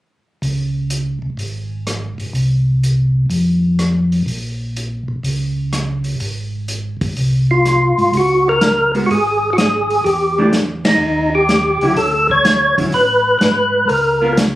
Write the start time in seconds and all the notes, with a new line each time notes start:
0.42 C#2, open hi-hat
0.90 closed hi-hat
1.22 C#2
1.37 G#1, open hi-hat
1.87 cross-stick, closed hi-hat
2.18 G#1, open hi-hat
2.33 C2, open hi-hat
2.83 closed hi-hat
3.30 F2, open hi-hat
3.79 cross-stick, closed hi-hat
4.12 open hi-hat
4.26 A#1, open hi-hat
4.76 closed hi-hat
5.08 A#1
5.23 C#2, open hi-hat
5.73 cross-stick, closed hi-hat
6.04 open hi-hat
6.20 G#1, open hi-hat
6.68 closed hi-hat
7.01 G#1, kick, open hi-hat
7.17 C2, open hi-hat
7.51 F4
7.65 cross-stick, closed hi-hat
7.98 G#2, open hi-hat
8.13 C#2 F#4, open hi-hat
8.49 A#4
8.61 snare, closed hi-hat
8.94 G#3 B3 F#4, open hi-hat
9.06 G#1 F#4
9.11 G#4, open hi-hat
9.53 F#4
9.58 G#4, snare, closed hi-hat
9.90 open hi-hat
10.04 E2 G4, open hi-hat
10.38 E3 A3 D4 G4
10.53 snare, closed hi-hat
10.85 D#4, snare, ride
11.01 D#2
11.35 G4
11.49 snare, closed hi-hat
11.81 C#2 D3 F#3 C#4 E4, open hi-hat
11.96 D2 A4, open hi-hat
12.30 C#5, kick
12.45 snare, closed hi-hat
12.78 D2 D3 F#3 C#4 E4, kick, open hi-hat
12.92 A1 B4, open hi-hat
13.39 G#2 B4, snare, closed hi-hat
13.88 C#2 A#4, open hi-hat
14.22 B3 F4 A#4
14.37 snare, closed hi-hat